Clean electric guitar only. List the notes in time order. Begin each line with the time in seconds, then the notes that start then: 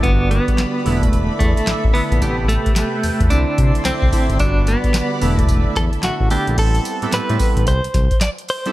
0.03 B3
0.31 B3
1.09 A3
1.39 A3
1.94 B3
2.48 A3
3.30 D4
3.85 C4
4.40 D4
4.68 B3
5.41 A3
5.77 A4
6.04 F#4
6.31 G4
6.59 A4
7.14 B4
7.68 C5
8.22 D5
8.50 C5